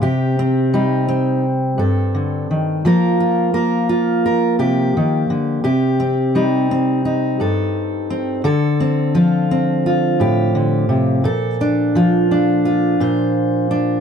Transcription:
\new Staff \with { instrumentName = "Steel-string acoustic guitar" } { \time 4/4 \key c \dorian \tempo 4 = 86 << { g'8 c'8 ees'8 c'4 a'4. | <bes f' bes'>8 f'8 bes'8 f'8 bes'8 g'4. | g'8 c'8 ees'8 c'8 ees'8 a'4 c'8 | a'8 c'8 f'8 c'8 f'8 g'4. |
a'8 d'8 f'8 d'8 f'8 c''4 d'8 | } \\ { c4 g4. g,8 d8 ees8 | f4 bes4. c8 ees8 d8 | c4 g4. g,4. | d4 f4. a,8 d8 c8 |
bes,4 f4. bes,4. | } >> }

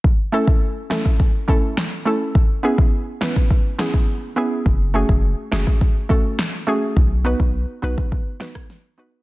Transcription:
<<
  \new Staff \with { instrumentName = "Synth pluck" } { \time 4/4 \key a \lydian \tempo 4 = 104 r8 <a cis' e' a'>8 r8 <a cis' e' a'>8 r8 <a cis' e' a'>8 r8 <a cis' e' a'>8 | r8 <b cis' e' gis'>8 r8 <b cis' e' b'>8 r8 <b cis' e' gis'>8 r8 <b cis' e' gis'>8 | r8 <a cis' fis' gis'>8 r8 <a cis' fis' gis'>8 r8 <a cis' fis' a'>8 r8 <a cis' fis' gis'>8 | r8 <b dis' fis' b'>8 r8 <b dis' fis' b'>8 r8 <b dis' fis' b'>8 r8 <b dis' fis' b'>8 | }
  \new Staff \with { instrumentName = "Sub bass" } { \clef bass \time 4/4 \key a \lydian r1 | r1 | fis,,8. fis,,8 r16 fis,,16 r2 r16 | b,,8. b,,8 r16 b,,16 r2 r16 | }
  \new DrumStaff \with { instrumentName = "Drums" } \drummode { \time 4/4 bd8. bd16 r8 <hc sn>16 bd16 bd8 bd8 <hc sn>4 | bd8. bd16 r8 <hc sn>16 bd16 bd8 <hc sn>16 bd16 r4 | bd8. bd16 r8 <hc sn>16 bd16 bd8 bd8 <hc sn>4 | bd8. bd16 r8. bd16 bd8 <hc sn>16 <bd ss>16 sn4 | }
>>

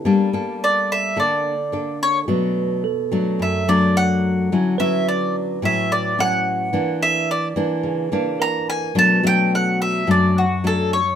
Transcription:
<<
  \new Staff \with { instrumentName = "Mandolin" } { \time 4/4 \key b \minor \tempo 4 = 108 r4 d''8 e''8 d''4. cis''8 | r2 e''8 d''8 fis''4~ | fis''8 e''8 d''8 r8 e''8 d''8 fis''4~ | fis''8 e''8 d''8 r4. ais''8 gis''8 |
a''8 g''8 fis''8 e''8 d''8 fis'8 a'8 cis''8 | }
  \new Staff \with { instrumentName = "Tine electric piano" } { \time 4/4 \key b \minor r1 | r4 a'2 r4 | r8 b'2 r4. | r2. ais'4~ |
ais'8 r2. r8 | }
  \new Staff \with { instrumentName = "Nylon-string guitar" } { \time 4/4 \key b \minor << { <bes d' a'>8 <bes d' a'>4. <bes d' a'>8 r8 <bes d' a'>4 | <fis a d'>4 r8 <fis a d'>4 <fis a d'>4. | <fis cis' e'>8 <fis cis' e'>4. <fis cis' e'>4 <fis cis' e'>4 | <e ais d'>4. <e ais d'>4 <e ais d'>4. |
<fis a d'>8 <fis a d'>4. <fis a d'>8 r8 <fis a d'>8 r8 | } \\ { g2 d2 | b,2 fis,2 | d2 a,2 | r2 cis4 r4 |
b,2 fis,2 | } >> }
>>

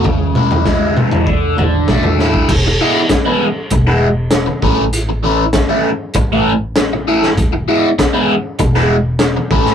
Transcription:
<<
  \new Staff \with { instrumentName = "Overdriven electric guitar" } { \time 4/4 \key e \mixolydian \tempo 4 = 98 cis8 e'8 gis8 e8 d8 d8 a8 e'8 | r8 <e gis b e'>16 r8 <e gis b e'>16 r8. <e gis b e'>16 r4 <e a cis' e'>16 r16 | r8 <e a cis' e'>16 r8 <e a cis' e'>16 r8. <e a cis' e'>16 r4 <e a cis' e'>16 r16 | r8 <e gis b e'>16 r8 <e gis b e'>16 r8. <e gis b e'>16 r4 <e a cis' e'>16 r16 | }
  \new Staff \with { instrumentName = "Upright bass" } { \clef bass \time 4/4 \key e \mixolydian cis,2 d,8 a,,4. | e,,8 r4. e,,4. a,,8~ | a,,4. r8 a,,2 | e,,8 r4. e,,4. a,,8 | }
  \new DrumStaff \with { instrumentName = "Drums" } \drummode { \time 4/4 <bd tomfh>8 toml16 tomfh16 <bd sn>8 toml16 tomfh16 bd8 tomfh8 <bd sn toml>16 tomfh16 sn16 bd16 | <cymc bd>4 <hh bd sn>4 <hh bd>4 <hh sn>8 bd8 | hh4 <hh bd sn>4 <hh bd>4 <hh sn>8. sn16 | <hh bd>4 <hh bd sn>4 <hh bd>16 sn8. <hh sn>8 bd16 sn16 | }
>>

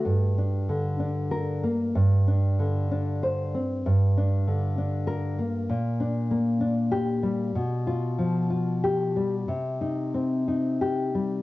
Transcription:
\new Staff \with { instrumentName = "Nylon-string guitar" } { \time 3/4 \key g \minor \tempo 4 = 95 << { r2 bes'4 | r2 c''4 | r2 bes'4 | r2 g'4 |
r2 g'4 | r2 g'4 | } \\ { g,8 d'8 d8 d'4 bes8 | g,8 d'8 d8 d'4 c'8 | g,8 d'8 d8 d'4 bes8 | bes,8 d'8 bes8 d'4 g8 |
b,8 f'8 f8 f'4 g8 | c8 ees'8 c'8 ees'4 g8 | } >> }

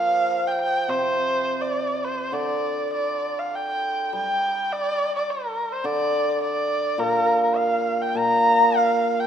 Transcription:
<<
  \new Staff \with { instrumentName = "Erhu" } { \time 2/4 \tempo 4 = 104 f''8. g''16 g''8 c''8~ | c''8. d''8. c''8 | d''4 d''8. f''16 | g''4 g''4 |
d''8. d''16 bes'8. c''16 | d''4 d''4 | bes'8. bes'16 f''8. g''16 | bes''4 f''8. g''16 | }
  \new Staff \with { instrumentName = "Hammered dulcimer" } { \clef bass \time 2/4 <bes, f>4. c8~ | c2 | d2~ | d4 g4~ |
g2 | d2 | bes,2 | bes,2 | }
>>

